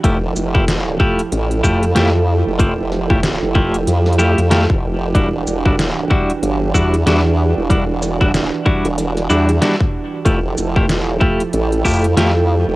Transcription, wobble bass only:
0.04 0.34 F1 loud
0.36 0.98 F1 loud
1.32 1.62 A1 loud
1.64 1.94 F2 loud
1.96 2.44 F2 loud
2.47 3.40 F1 medium
3.43 3.85 F1 medium
3.88 4.35 F2 loud
4.38 4.67 F2 loud
4.70 5.13 F1 medium
5.15 5.45 E1 loud
5.47 6.09 E1 medium
6.43 6.72 G1 loud
6.75 7.04 E2 loud
7.07 7.54 E2 loud
7.58 8.50 E1 loud
8.85 9.28 E1 loud
9.30 9.60 E2 loud
10.26 10.55 F1 loud
10.58 11.02 F1 loud
11.02 11.19 E1 loud
11.54 11.83 A1 loud
11.85 12.15 F2 loud
12.17 12.65 F2 loud
12.68 12.76 F1 loud

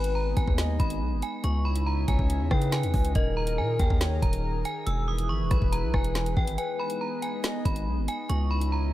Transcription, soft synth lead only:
0.00 0.54 B4 loud
0.59 0.99 D#5 medium
2.08 2.49 C#5 medium
2.51 3.11 B4 medium
3.16 3.97 A#4 loud
4.01 4.41 C#5 medium
5.51 6.54 B4 medium
6.58 7.40 B4 loud
7.44 7.84 D#5 medium

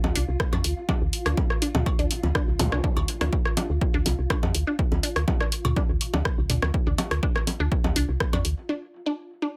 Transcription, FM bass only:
0.04 0.12 D2 medium
0.16 0.25 C2 medium
0.28 0.37 C2 medium
0.53 0.61 F2 loud
0.64 0.74 D2 medium
1.01 1.10 D2 loud
1.26 1.34 D2 medium
1.75 1.83 D2 medium
1.99 2.07 D2 medium
2.23 2.32 D2 medium
2.48 2.56 C2 medium
2.59 2.69 D2 loud
2.72 2.81 C2 loud
2.97 3.05 D2 loud
3.21 3.29 D2 medium
3.70 3.78 D2 medium
3.94 4.03 D2 medium
4.06 4.15 C2 loud
4.19 4.27 C2 medium
4.43 4.51 F2 medium
4.55 4.64 D2 medium
4.92 5.00 D2 loud
5.16 5.25 D2 medium
5.65 5.73 D2 medium
5.89 5.98 D2 medium
6.14 6.22 D2 medium
6.38 6.47 C2 loud
6.50 6.59 D2 medium
6.62 6.71 D2 medium
6.87 6.95 D2 loud
7.11 7.20 D2 medium
7.60 7.68 D2 medium
7.84 7.93 D2 medium
7.96 8.05 C2 medium
8.09 8.17 C2 medium
8.33 8.42 F2 loud
8.45 8.54 D2 medium

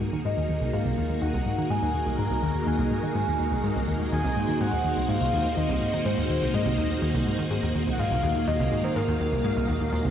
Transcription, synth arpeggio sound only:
0.01 0.12 G#2 medium
0.13 0.18 D#3 medium
0.25 0.34 G#2 loud
0.37 0.46 D#2 loud
0.49 0.61 D#2 medium
0.61 0.70 C2 medium
0.73 0.82 G#2 loud
0.86 0.95 C2 medium
0.98 1.07 D#2 medium
1.10 1.21 D#2 medium
1.22 1.31 D#2 loud
1.34 1.43 C2 loud
1.46 1.57 G#2 medium
1.58 1.64 D#3 medium
1.70 1.79 G#2 loud
1.82 1.91 D#2 loud
1.94 2.06 D#2 medium
2.07 2.16 C2 medium
2.19 2.28 G#2 loud
2.31 2.40 C2 loud
2.43 2.52 D#2 loud
2.55 2.66 D#2 medium
2.67 2.76 D#2 loud
2.79 2.88 C2 loud
2.91 3.03 G#2 medium
3.03 3.09 D#3 medium
3.15 3.24 G#2 loud
3.27 3.36 D#2 loud
3.40 3.51 D#2 medium
3.52 3.61 C2 medium
3.64 3.73 G#2 medium
3.76 3.85 C2 loud
3.88 3.97 D#2 medium
4.00 4.11 D#2 medium
4.12 4.21 D#2 loud
4.24 4.33 C2 loud
4.36 4.48 G#2 medium
4.48 4.54 D#3 medium
4.60 4.69 G#2 loud
4.72 4.82 D#2 loud
4.84 4.96 D#2 medium
4.97 5.06 C2 medium
5.08 5.18 G#2 loud
5.21 5.30 C2 loud
5.33 5.42 D#2 loud
5.45 5.56 D#2 medium
5.57 5.66 D#2 medium
5.69 5.78 C2 loud
5.81 5.93 G#2 medium
5.93 5.99 D#3 medium
6.05 6.15 G#2 loud
6.17 6.27 D#2 loud
6.29 6.41 D#2 medium
6.42 6.51 C2 medium
6.54 6.63 G#2 loud
6.66 6.75 C2 loud
6.78 6.87 D#2 medium
6.90 7.01 D#2 medium
7.02 7.11 D#2 medium
7.14 7.23 C2 loud
7.26 7.38 G#2 medium
7.39 7.44 D#3 medium
7.51 7.60 G#2 loud
7.63 7.72 D#2 loud
7.75 7.86 D#2 medium
7.87 7.96 C2 medium
7.99 8.08 G#2 loud
8.11 8.20 C2 loud
8.23 8.32 D#2 loud
8.35 8.46 D#2 medium
8.48 8.57 D#2 loud
8.60 8.69 C2 loud
8.72 8.83 G#2 medium
8.84 8.89 D#3 medium
8.96 9.05 G#2 loud
9.08 9.17 D#2 loud
9.20 9.32 D#2 medium
9.32 9.41 C2 medium
9.44 9.53 G#2 medium
9.56 9.65 C2 loud
9.68 9.77 D#2 loud
9.81 9.92 D#2 medium
9.93 10.02 D#2 loud
10.05 10.10 C2 loud

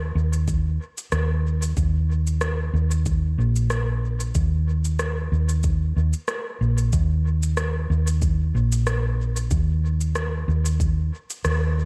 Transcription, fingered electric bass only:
0.00 0.13 D#2 medium
0.15 0.77 D#2 medium
1.12 1.74 D#2 medium
1.77 2.71 D#2 medium
2.74 3.35 D#2 medium
3.38 4.32 A#1 medium
4.35 5.29 D#2 medium
5.32 5.94 D#2 medium
5.97 6.12 D#2 medium
6.61 6.90 A#1 medium
6.93 7.87 D#2 loud
7.90 8.52 D#2 medium
8.55 9.48 A#1 medium
9.51 10.45 D#2 medium
10.48 11.10 D#2 medium
11.45 11.85 D#2 medium

